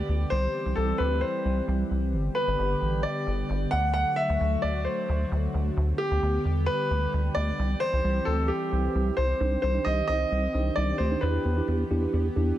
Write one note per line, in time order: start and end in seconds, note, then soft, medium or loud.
0.00 0.27 D3 medium
0.00 0.30 G3 medium
0.00 0.30 B3 medium
0.00 2.10 G4 medium
0.00 0.34 D5 loud
0.09 0.25 D2 loud
0.30 0.47 C2 loud
0.30 2.12 E3 medium
0.30 2.11 G3 medium
0.30 2.12 C4 medium
0.30 0.73 C5 loud
0.66 0.74 C2 medium
0.76 0.93 C2 loud
0.76 1.00 A4 medium
0.98 1.24 D2 medium
0.98 1.22 B4 medium
1.21 1.64 C5 medium
1.45 1.61 C2 medium
1.68 1.84 C2 loud
1.91 2.15 C2 medium
2.13 2.29 G1 loud
2.13 7.55 D3 medium
2.13 3.71 G3 medium
2.13 3.71 B3 medium
2.13 3.71 G4 medium
2.35 3.00 B4 medium
2.48 2.55 G1 medium
2.59 2.75 G1 loud
2.82 3.05 A1 medium
3.03 3.74 D5 medium
3.27 3.43 G1 loud
3.50 3.66 G1 loud
3.71 4.04 D2 loud
3.71 5.75 F#3 medium
3.71 5.75 A3 medium
3.71 5.75 F#4 medium
3.71 3.92 F#5 loud
3.94 4.18 F#5 loud
4.16 4.64 E5 loud
4.29 4.37 D2 loud
4.41 4.57 D2 loud
4.62 4.87 D2 medium
4.62 4.86 D5 medium
4.85 5.28 C5 medium
5.09 5.25 D2 loud
5.32 5.48 D2 loud
5.54 5.70 D2 loud
5.77 5.93 D2 loud
5.77 9.37 G3 medium
5.77 7.57 B3 medium
5.77 7.57 G4 medium
5.98 6.41 G4 loud
6.11 6.19 D2 loud
6.22 6.38 D2 loud
6.45 6.69 E2 medium
6.66 7.09 B4 loud
6.91 7.07 D2 medium
7.13 7.29 D2 loud
7.35 7.52 D2 loud
7.35 7.82 D5 loud
7.59 7.75 C2 loud
7.59 9.39 E3 medium
7.59 9.39 C4 medium
7.59 9.39 G4 medium
7.80 8.28 C5 loud
7.93 8.01 C2 medium
8.04 8.20 C2 loud
8.25 8.51 D2 medium
8.25 8.50 A4 medium
8.48 9.13 G4 medium
8.72 8.88 C2 medium
8.95 9.11 C2 loud
9.17 9.34 C2 medium
9.17 9.61 C5 medium
9.40 9.56 C2 loud
9.40 11.21 D#3 medium
9.40 11.21 C4 medium
9.40 9.67 D4 medium
9.40 9.67 D#4 medium
9.40 12.58 G4 medium
9.40 9.67 C5 medium
9.62 9.79 C2 loud
9.62 9.86 C5 medium
9.75 10.01 D4 medium
9.75 10.01 D#4 medium
9.75 10.01 C5 medium
9.85 10.02 C2 loud
9.85 10.06 D#5 loud
10.08 10.25 C2 medium
10.08 10.43 C4 medium
10.08 10.44 D#4 medium
10.08 10.43 C5 medium
10.08 10.78 D#5 loud
10.32 10.48 C2 loud
10.54 10.70 C2 loud
10.54 10.98 D4 medium
10.54 10.98 D#4 medium
10.54 10.98 C5 medium
10.76 10.93 C2 loud
10.76 11.00 D5 medium
10.98 11.16 D2 medium
10.98 11.22 C5 medium
11.11 11.20 D4 medium
11.11 11.20 D#4 medium
11.11 11.20 C5 medium
11.21 11.38 E2 loud
11.21 12.58 E3 medium
11.21 12.58 B3 medium
11.21 11.49 D4 medium
11.21 11.49 E4 medium
11.21 11.49 G4 medium
11.21 11.64 B4 medium
11.45 11.61 E2 loud
11.57 11.83 D4 medium
11.57 11.83 E4 medium
11.57 11.83 G4 medium
11.68 11.84 E2 loud
11.91 12.07 E2 medium
11.91 12.25 D4 medium
11.91 12.25 E4 medium
11.91 12.25 G4 medium
12.13 12.29 E2 loud
12.36 12.52 E2 medium
12.36 12.58 D4 medium
12.36 12.58 E4 medium
12.36 12.58 G4 medium